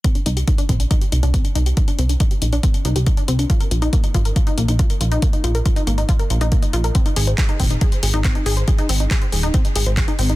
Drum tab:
HH |xxxxxxxxxxxxxxxx|xxxxxxxxxxxxxxxx|xxxxxxxxxxxxxxxx|xxxxxxxxxxxxxxxx|
CP |----------------|----------------|----------------|----------------|
BD |o---o-o-o---o---|o---o---o---o---|o---o-o-o---o---|o---o---o---o---|

HH |xxoxxxoxxxoxxxox|xxoxxxoxxxoxxxox|
CP |----x-------x---|----x-------x---|
BD |o---o-o-o---o---|o---o---o---o---|